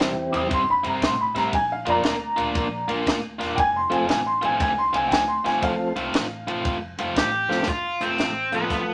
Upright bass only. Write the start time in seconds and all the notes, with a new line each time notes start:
0.00 E2
0.34 E2
0.51 G2
0.85 G2
1.02 A2
1.35 A2
1.53 A#1
1.86 F2
2.04 D2
2.37 D2
2.55 A#1
2.88 A#1
3.07 D2
3.40 E1
3.58 F1
3.91 F1
4.08 A1
4.42 A1
4.60 C2
4.93 C2
5.12 D2
5.44 D2
5.62 C2
5.95 C2
6.13 A1
6.46 A1
6.65 F1
6.98 F1
7.16 A1
7.49 A1
7.68 F1
8.01 F1
8.19 A1
8.53 A1
8.70 C2